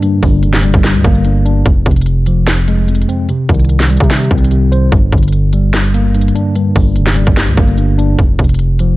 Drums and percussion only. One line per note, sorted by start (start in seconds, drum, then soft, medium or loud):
0.02 closed hi-hat medium
0.23 kick medium
0.23 open hi-hat medium
0.43 closed hi-hat medium
0.53 snare medium
0.63 closed hi-hat medium
0.74 kick loud
0.84 snare loud
0.84 closed hi-hat medium
1.04 kick loud
1.04 closed hi-hat medium
1.15 closed hi-hat soft
1.25 closed hi-hat medium
1.46 closed hi-hat medium
1.66 kick loud
1.66 closed hi-hat medium
1.86 kick medium
1.86 closed hi-hat soft
1.86 open hi-hat medium
1.91 closed hi-hat medium
1.96 closed hi-hat medium
2.01 closed hi-hat medium
2.06 closed hi-hat medium
2.26 closed hi-hat medium
2.47 snare loud
2.47 closed hi-hat medium
2.68 closed hi-hat medium
2.88 closed hi-hat medium
2.95 closed hi-hat medium
3.02 closed hi-hat medium
3.09 closed hi-hat medium
3.29 closed hi-hat medium
3.49 kick medium
3.49 closed hi-hat medium
3.49 open hi-hat medium
3.54 closed hi-hat medium
3.59 closed hi-hat medium
3.65 closed hi-hat medium
3.69 closed hi-hat medium
3.80 snare medium
3.90 closed hi-hat medium
3.97 kick loud
3.97 closed hi-hat medium
4.04 closed hi-hat medium
4.10 snare loud
4.10 closed hi-hat medium
4.17 closed hi-hat medium
4.24 closed hi-hat medium
4.31 kick loud
4.31 closed hi-hat medium
4.38 closed hi-hat medium
4.45 closed hi-hat medium
4.51 closed hi-hat medium
4.72 closed hi-hat medium
4.92 kick loud
4.92 closed hi-hat medium
5.12 kick medium
5.12 closed hi-hat soft
5.12 open hi-hat medium
5.18 closed hi-hat medium
5.23 closed hi-hat medium
5.28 closed hi-hat medium
5.33 closed hi-hat medium
5.53 closed hi-hat loud
5.74 snare loud
5.74 closed hi-hat medium
5.94 closed hi-hat medium
6.15 closed hi-hat medium
6.21 closed hi-hat medium
6.28 closed hi-hat medium
6.36 closed hi-hat medium
6.55 closed hi-hat medium
6.76 kick medium
6.76 open hi-hat medium
6.96 closed hi-hat medium
7.06 snare medium
7.16 closed hi-hat medium
7.27 kick loud
7.37 snare loud
7.37 closed hi-hat medium
7.57 kick loud
7.57 closed hi-hat medium
7.68 closed hi-hat soft
7.78 closed hi-hat medium
7.99 closed hi-hat medium
8.19 kick loud
8.19 closed hi-hat medium
8.39 kick medium
8.39 closed hi-hat soft
8.39 open hi-hat medium
8.44 closed hi-hat medium
8.49 closed hi-hat medium
8.54 closed hi-hat medium
8.59 closed hi-hat medium
8.79 closed hi-hat medium